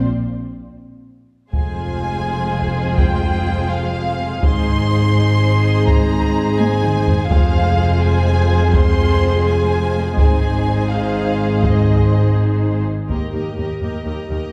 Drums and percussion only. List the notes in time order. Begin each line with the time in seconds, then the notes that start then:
1.53 taiko
2.62 taiko
2.98 taiko
4.43 taiko
5.88 taiko
6.60 taiko high
6.84 taiko mid
7.08 taiko low
7.31 taiko
8.74 taiko
10.18 taiko
11.63 taiko
13.10 taiko